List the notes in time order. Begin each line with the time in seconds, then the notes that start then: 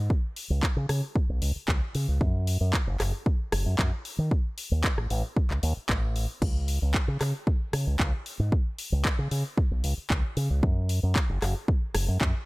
0.10 kick
0.36 open hi-hat
0.50 C#2
0.63 kick, clap
0.76 C#3
0.89 C#3, cross-stick, open hi-hat
1.15 kick
1.29 B1
1.42 C#2, open hi-hat
1.56 muted fingered electric bass stroke
1.68 C#2, kick, clap
1.95 C#3, open hi-hat
2.08 C#2
2.21 F#2, kick
2.47 open hi-hat
2.61 F#2
2.73 kick, clap
2.87 F#1
3.00 F#1, cross-stick, clap, open hi-hat
3.26 kick
3.52 F#1, cross-stick, open hi-hat
3.66 F#2
3.79 F#2, kick, clap
4.05 open hi-hat
4.18 D#3
4.31 kick
4.58 open hi-hat
4.71 D#2
4.84 kick, clap
4.97 A1, cross-stick
5.10 A1, open hi-hat
5.36 kick
5.50 C#2, clap
5.63 D#2, open hi-hat
5.89 A1, kick, clap
6.16 open hi-hat
6.42 C#2, kick, crash
6.68 open hi-hat
6.82 C#2
6.94 kick, clap
7.08 C#3
7.21 C#3, cross-stick, clap, open hi-hat
7.47 kick
7.73 C#3, cross-stick, open hi-hat
7.87 C#2
8.00 C#2, kick, clap
8.26 open hi-hat
8.39 G#2
8.52 kick
8.78 open hi-hat
8.92 C#2
9.05 kick, clap
9.19 C#3
9.31 C#3, open hi-hat
9.57 kick
9.71 B1
9.84 C#2, open hi-hat
10.10 C#2, kick, clap
10.37 C#3, open hi-hat
10.50 C#2
10.63 F#2, kick
10.89 open hi-hat
11.03 F#2
11.16 kick, clap
11.29 F#1
11.42 F#1, cross-stick, clap, open hi-hat
11.68 kick
11.95 F#1, cross-stick, open hi-hat
12.08 F#2
12.21 F#2, kick, clap